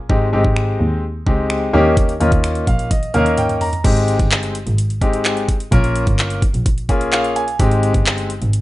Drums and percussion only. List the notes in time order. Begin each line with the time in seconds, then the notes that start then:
0.10 kick
0.45 kick
0.57 finger snap
1.27 kick
1.50 finger snap
1.97 kick, closed hi-hat
2.09 closed hi-hat
2.21 closed hi-hat
2.32 kick, closed hi-hat
2.44 finger snap, closed hi-hat
2.55 closed hi-hat
2.67 kick, closed hi-hat
2.79 closed hi-hat
2.91 kick, closed hi-hat, high tom
3.03 closed hi-hat
3.14 closed hi-hat, mid tom
3.26 closed hi-hat
3.38 closed hi-hat, mid tom
3.49 closed hi-hat, mid tom
3.61 floor tom, open hi-hat
3.73 closed hi-hat, floor tom
3.85 kick, closed hi-hat, crash
3.96 closed hi-hat
4.08 closed hi-hat
4.19 kick, closed hi-hat
4.31 clap, closed hi-hat
4.43 closed hi-hat
4.55 closed hi-hat
4.67 closed hi-hat
4.78 closed hi-hat
4.90 closed hi-hat
5.02 kick, closed hi-hat
5.13 closed hi-hat
5.25 clap, closed hi-hat
5.37 closed hi-hat
5.49 kick, closed hi-hat
5.60 closed hi-hat
5.72 kick, closed hi-hat
5.84 closed hi-hat
5.96 closed hi-hat
6.07 kick, closed hi-hat
6.19 clap, closed hi-hat
6.30 closed hi-hat
6.42 kick, closed hi-hat
6.54 closed hi-hat
6.66 kick, closed hi-hat
6.78 closed hi-hat
6.89 kick, closed hi-hat
7.01 closed hi-hat
7.13 clap, closed hi-hat
7.24 closed hi-hat
7.36 closed hi-hat
7.48 closed hi-hat
7.60 kick, closed hi-hat
7.71 closed hi-hat
7.83 closed hi-hat
7.94 kick, closed hi-hat
8.06 clap, closed hi-hat
8.18 closed hi-hat
8.30 closed hi-hat
8.42 closed hi-hat
8.53 closed hi-hat